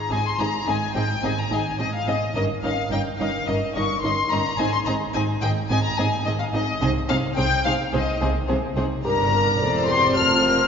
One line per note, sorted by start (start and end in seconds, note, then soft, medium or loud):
0.00 0.11 A#5 medium
0.09 0.19 G#1 medium
0.09 0.18 G#2 medium
0.09 0.17 C4 medium
0.09 0.17 D#4 medium
0.09 0.19 G#4 soft
0.09 0.19 D#5 medium
0.09 0.25 G#5 medium
0.26 0.40 C6 medium
0.38 0.47 G#1 soft
0.38 0.46 G#2 medium
0.38 0.46 C4 soft
0.38 0.46 D#4 soft
0.38 0.47 G#4 soft
0.38 0.47 D#5 medium
0.38 0.67 A#5 medium
0.67 0.75 G#1 medium
0.67 0.75 G#2 medium
0.67 0.75 C4 soft
0.67 0.75 D#4 medium
0.67 0.75 G#4 medium
0.67 0.75 D#5 medium
0.67 0.95 G#5 medium
0.94 1.03 G#1 medium
0.94 1.03 G#2 medium
0.94 1.02 C4 medium
0.94 1.02 D#4 soft
0.94 1.03 G#4 soft
0.94 1.04 D#5 soft
0.94 1.22 G5 medium
1.23 1.31 G#1 medium
1.23 1.31 G#2 medium
1.23 1.31 C4 medium
1.23 1.31 D#4 medium
1.23 1.32 G#4 soft
1.23 1.31 D#5 soft
1.23 1.37 G#5 medium
1.38 1.52 A#5 medium
1.50 1.59 G#1 medium
1.50 1.59 G#2 medium
1.50 1.58 C4 soft
1.50 1.58 D#4 medium
1.50 1.59 G#4 soft
1.50 1.59 D#5 soft
1.50 1.79 G#5 medium
1.78 1.87 G#1 medium
1.78 1.87 G#2 medium
1.78 1.86 C4 medium
1.78 1.87 D#4 soft
1.78 1.87 G#4 soft
1.78 1.87 D#5 soft
1.78 1.93 D#5 medium
1.95 2.08 F5 medium
2.07 2.15 G#1 medium
2.07 2.15 G#2 soft
2.07 2.15 C4 soft
2.07 2.15 D#4 soft
2.07 2.15 G#4 soft
2.07 2.33 D#5 medium
2.07 2.15 D#5 medium
2.35 2.43 G1 medium
2.35 2.43 G2 medium
2.35 2.43 C#4 soft
2.35 2.44 D#4 soft
2.35 2.43 A#4 medium
2.35 2.43 D#5 medium
2.63 2.71 G1 medium
2.63 2.71 G2 medium
2.63 2.71 C#4 medium
2.63 2.71 D#4 soft
2.63 2.71 A#4 soft
2.63 2.71 D#5 soft
2.63 2.90 F5 medium
2.91 2.99 G1 medium
2.91 2.99 G2 medium
2.91 3.00 C#4 soft
2.91 2.99 D#4 soft
2.91 2.99 A#4 medium
2.91 2.99 D#5 medium
2.91 2.99 G5 medium
3.19 3.28 G1 medium
3.19 3.27 G2 medium
3.19 3.28 C#4 soft
3.19 3.27 D#4 soft
3.19 3.27 A#4 soft
3.19 3.28 D#5 soft
3.19 3.47 F5 medium
3.47 3.56 G1 medium
3.47 3.55 G2 medium
3.47 3.55 C#4 medium
3.47 3.56 D#4 medium
3.47 3.55 A#4 soft
3.47 3.55 D#5 medium
3.47 3.75 D#5 medium
3.75 3.83 G1 medium
3.75 3.83 G2 medium
3.75 3.84 C#4 soft
3.75 3.84 D#4 medium
3.75 3.83 A#4 medium
3.75 3.83 D#5 medium
3.75 4.02 C#6 medium
4.02 4.11 G1 medium
4.02 4.11 G2 medium
4.02 4.11 C#4 soft
4.02 4.11 D#4 soft
4.02 4.11 A#4 soft
4.02 4.12 D#5 soft
4.02 4.30 C6 medium
4.31 4.39 G1 medium
4.31 4.39 G2 medium
4.31 4.40 C#4 medium
4.31 4.39 D#4 soft
4.31 4.39 A#4 medium
4.31 4.39 D#5 soft
4.31 4.59 A#5 medium
4.58 4.67 G#1 medium
4.58 4.67 G#2 medium
4.58 4.67 C4 medium
4.58 4.67 D#4 medium
4.58 4.66 G#4 medium
4.58 4.66 D#5 medium
4.58 4.72 G#5 medium
4.72 4.78 C6 medium
4.86 4.94 G#1 medium
4.86 4.95 G#2 medium
4.86 4.95 C4 medium
4.86 4.94 D#4 soft
4.86 4.94 G#4 medium
4.86 4.94 D#5 medium
4.86 4.94 A#5 medium
5.14 5.22 G#1 medium
5.14 5.22 G#2 medium
5.14 5.22 C4 soft
5.14 5.22 D#4 medium
5.14 5.22 G#4 medium
5.14 5.23 D#5 medium
5.14 5.22 G#5 medium
5.41 5.50 G#1 medium
5.41 5.50 G#2 medium
5.41 5.50 C4 medium
5.41 5.50 D#4 medium
5.41 5.51 G#4 soft
5.41 5.51 D#5 soft
5.41 5.49 G5 medium
5.70 5.78 G#1 medium
5.70 5.78 G#2 medium
5.70 5.78 C4 medium
5.70 5.78 D#4 medium
5.70 5.78 G#4 medium
5.70 5.78 D#5 medium
5.70 5.83 G#5 medium
5.83 5.97 A#5 medium
5.97 6.06 G#1 medium
5.97 6.06 G#2 medium
5.97 6.06 C4 medium
5.97 6.05 D#4 medium
5.97 6.06 G#4 medium
5.97 6.06 D#5 medium
5.97 6.25 G#5 medium
6.25 6.34 G#1 medium
6.25 6.34 G#2 medium
6.25 6.34 C4 medium
6.25 6.33 D#4 medium
6.25 6.34 G#4 medium
6.25 6.31 D#5 medium
6.25 6.34 D#5 soft
6.39 6.45 F5 medium
6.53 6.62 G#1 medium
6.53 6.62 G#2 medium
6.53 6.61 C4 medium
6.53 6.61 D#4 medium
6.53 6.62 G#4 medium
6.53 6.79 D#5 medium
6.53 6.62 D#5 medium
6.81 6.89 C2 medium
6.81 6.89 C3 medium
6.81 6.89 C4 medium
6.81 6.89 D#4 medium
6.81 6.89 G#4 medium
6.81 6.89 C5 medium
6.81 6.89 D#5 medium
7.08 7.17 C2 medium
7.08 7.17 C3 medium
7.08 7.17 C4 medium
7.08 7.17 D#4 medium
7.08 7.17 G#4 medium
7.08 7.16 C5 medium
7.08 7.17 F5 medium
7.36 7.45 C2 medium
7.36 7.45 C3 medium
7.36 7.45 C4 medium
7.36 7.45 D#4 medium
7.36 7.44 G#4 medium
7.36 7.44 C5 medium
7.36 7.64 G5 medium
7.65 7.73 C2 medium
7.65 7.73 C3 medium
7.65 7.73 C4 medium
7.65 7.73 D#4 medium
7.65 7.73 G#4 medium
7.65 7.73 C5 medium
7.65 7.73 F5 medium
7.92 8.01 C2 medium
7.92 8.01 C3 medium
7.92 8.01 C4 medium
7.92 8.01 D#4 medium
7.92 8.00 G#4 medium
7.92 8.00 C5 medium
7.92 8.20 D#5 medium
8.20 8.29 C2 medium
8.20 8.29 C3 medium
8.20 8.28 C4 medium
8.20 8.28 D#4 medium
8.20 8.29 G#4 medium
8.20 8.29 C5 medium
8.48 8.56 C2 medium
8.48 8.57 C3 medium
8.48 8.57 C4 medium
8.48 8.56 D#4 medium
8.48 8.56 G#4 medium
8.48 8.56 C5 medium
8.76 8.84 C2 medium
8.76 8.84 C3 medium
8.76 8.85 C4 medium
8.76 8.85 D#4 medium
8.76 8.84 G#4 medium
8.76 8.84 C5 medium
9.04 9.56 G1 medium
9.04 9.56 G2 medium
9.04 9.56 D4 medium
9.04 9.12 G4 medium
9.04 9.56 A#4 medium
9.04 9.85 A#5 loud
9.33 9.60 A#4 medium
9.60 10.17 E1 medium
9.60 10.17 E2 medium
9.60 10.68 C4 medium
9.60 9.88 A4 medium
9.60 10.15 C5 medium
9.60 10.17 D5 medium
9.88 10.16 G4 medium
9.88 10.17 C6 loud
10.16 10.68 F1 medium
10.16 10.68 F2 medium
10.16 10.68 F4 medium
10.16 10.44 A4 medium
10.16 10.68 C5 medium
10.16 10.68 F6 medium
10.44 10.68 A#4 medium